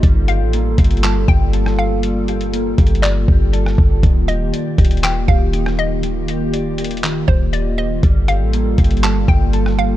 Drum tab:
HH |x-----------x-----------x-----------x--x--x--x--x-----------------------x-----------------------|x-----------x-----x-----x-----------x---x---x---x-----------------------x-----------------------|x-----------x-----------x-----------x--x--x--x--x-----------------------x-----------------------|x-----------x-----------x-----------x--x--x--x--x-----------------------x-----------------------|
CP |------------------------------------------------x-----------------------------------------------|------------------------------------------------x-----------------------------------------------|------------------------------------------------x-----------------------------------------------|------------------------------------------------x-----------------------------------------------|
SD |------------------------------------------------------------------------------r-----------------|------------------------------------------------------------------------------r-----------------|------------------------------------------------------------------------------r-----------------|------------------------------------------------------------------------------------------------|
BD |o-----------------------------------o-----------------------o-----------------------------------|------------------------------------o-----------------------o-----------------------o-----------|o-----------------------------------o-----------------------o-----------------------------------|------------------------------------------------------------o-----------------------------------|

HH |x-----------x-----------x-----------x--x--x--x--x-----------------------x-----------------------|
CP |------------------------------------------------x-----------------------------------------------|
SD |------------------------------------------------------------------------------r-----------------|
BD |o-----------------------------------o-----------------------o-----------------------------------|